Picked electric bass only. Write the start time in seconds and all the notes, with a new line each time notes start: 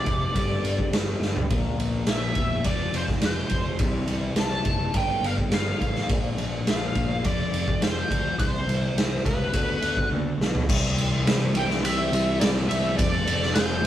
0.07 F1
0.35 G1
0.63 G1
0.91 G1
1.20 G1
1.51 A#1
1.77 A#1
2.07 A#1
2.36 E1
2.66 F1
2.93 F1
3.22 F1
3.50 F1
3.80 C2
4.07 C2
4.36 C2
4.65 F#1
4.94 G1
5.21 G1
5.50 G1
5.81 A1
6.09 A#1
6.38 A#1
6.67 A#1
6.95 A#1
7.24 F1
7.52 F1
7.81 F1
8.10 D2
8.39 C2
8.66 C2
8.95 C2
9.26 C#2
9.54 D2
9.82 D2
10.10 D2
10.38 B1
10.69 C2
11.25 C2
11.54 C2
11.83 C2
12.12 C2
12.41 C2
12.69 C2
12.99 F1
13.27 F1
13.56 F1
13.83 F1